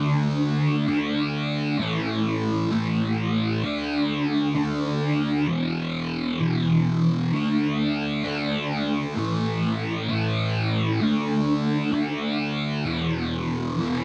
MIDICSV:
0, 0, Header, 1, 2, 480
1, 0, Start_track
1, 0, Tempo, 615385
1, 1403, Time_signature, 6, 3, 24, 8
1, 10954, End_track
2, 0, Start_track
2, 0, Title_t, "Distorted electric guitar"
2, 0, Program_c, 0, 30
2, 0, Note_on_c, 0, 50, 94
2, 0, Note_on_c, 0, 57, 92
2, 0, Note_on_c, 0, 62, 92
2, 667, Note_off_c, 0, 50, 0
2, 670, Note_off_c, 0, 62, 0
2, 680, Note_on_c, 0, 62, 89
2, 687, Note_off_c, 0, 57, 0
2, 690, Note_on_c, 0, 57, 77
2, 701, Note_on_c, 0, 50, 73
2, 1387, Note_off_c, 0, 62, 0
2, 1392, Note_off_c, 0, 50, 0
2, 1395, Note_on_c, 0, 45, 96
2, 1404, Note_off_c, 0, 57, 0
2, 1408, Note_on_c, 0, 52, 86
2, 1417, Note_on_c, 0, 57, 100
2, 2105, Note_off_c, 0, 45, 0
2, 2111, Note_off_c, 0, 52, 0
2, 2113, Note_off_c, 0, 57, 0
2, 2117, Note_on_c, 0, 57, 80
2, 2128, Note_on_c, 0, 52, 75
2, 2134, Note_on_c, 0, 45, 72
2, 2825, Note_off_c, 0, 57, 0
2, 2831, Note_off_c, 0, 52, 0
2, 2832, Note_off_c, 0, 45, 0
2, 2835, Note_on_c, 0, 50, 82
2, 2843, Note_on_c, 0, 57, 90
2, 2854, Note_on_c, 0, 62, 103
2, 3539, Note_off_c, 0, 62, 0
2, 3543, Note_off_c, 0, 50, 0
2, 3547, Note_off_c, 0, 57, 0
2, 3548, Note_on_c, 0, 62, 92
2, 3559, Note_on_c, 0, 57, 79
2, 3564, Note_on_c, 0, 50, 69
2, 4259, Note_off_c, 0, 62, 0
2, 4264, Note_off_c, 0, 57, 0
2, 4266, Note_on_c, 0, 40, 86
2, 4267, Note_off_c, 0, 50, 0
2, 4277, Note_on_c, 0, 47, 100
2, 4289, Note_on_c, 0, 52, 90
2, 4977, Note_off_c, 0, 40, 0
2, 4979, Note_off_c, 0, 52, 0
2, 4982, Note_off_c, 0, 47, 0
2, 4989, Note_on_c, 0, 52, 92
2, 5001, Note_on_c, 0, 47, 78
2, 5008, Note_on_c, 0, 40, 68
2, 5697, Note_off_c, 0, 52, 0
2, 5703, Note_off_c, 0, 47, 0
2, 5707, Note_off_c, 0, 40, 0
2, 5716, Note_on_c, 0, 50, 86
2, 5723, Note_on_c, 0, 57, 103
2, 5735, Note_on_c, 0, 62, 97
2, 6418, Note_off_c, 0, 62, 0
2, 6420, Note_off_c, 0, 50, 0
2, 6428, Note_on_c, 0, 62, 89
2, 6439, Note_off_c, 0, 57, 0
2, 6442, Note_on_c, 0, 57, 81
2, 6451, Note_on_c, 0, 50, 75
2, 7135, Note_off_c, 0, 62, 0
2, 7141, Note_off_c, 0, 50, 0
2, 7144, Note_on_c, 0, 45, 97
2, 7156, Note_off_c, 0, 57, 0
2, 7159, Note_on_c, 0, 52, 94
2, 7164, Note_on_c, 0, 57, 97
2, 7854, Note_off_c, 0, 45, 0
2, 7861, Note_off_c, 0, 52, 0
2, 7863, Note_off_c, 0, 57, 0
2, 7866, Note_on_c, 0, 57, 80
2, 7877, Note_on_c, 0, 52, 82
2, 7883, Note_on_c, 0, 45, 73
2, 8575, Note_off_c, 0, 57, 0
2, 8579, Note_off_c, 0, 45, 0
2, 8581, Note_off_c, 0, 52, 0
2, 8582, Note_on_c, 0, 50, 92
2, 8591, Note_on_c, 0, 57, 110
2, 8603, Note_on_c, 0, 62, 111
2, 9288, Note_off_c, 0, 62, 0
2, 9294, Note_off_c, 0, 50, 0
2, 9297, Note_on_c, 0, 62, 85
2, 9299, Note_off_c, 0, 57, 0
2, 9309, Note_on_c, 0, 57, 86
2, 9313, Note_on_c, 0, 50, 72
2, 10014, Note_off_c, 0, 62, 0
2, 10019, Note_off_c, 0, 57, 0
2, 10022, Note_off_c, 0, 50, 0
2, 10022, Note_on_c, 0, 40, 92
2, 10030, Note_on_c, 0, 47, 99
2, 10037, Note_on_c, 0, 52, 107
2, 10739, Note_off_c, 0, 40, 0
2, 10743, Note_off_c, 0, 47, 0
2, 10746, Note_off_c, 0, 52, 0
2, 10755, Note_on_c, 0, 52, 82
2, 10764, Note_on_c, 0, 47, 77
2, 10772, Note_on_c, 0, 40, 75
2, 10954, Note_off_c, 0, 40, 0
2, 10954, Note_off_c, 0, 47, 0
2, 10954, Note_off_c, 0, 52, 0
2, 10954, End_track
0, 0, End_of_file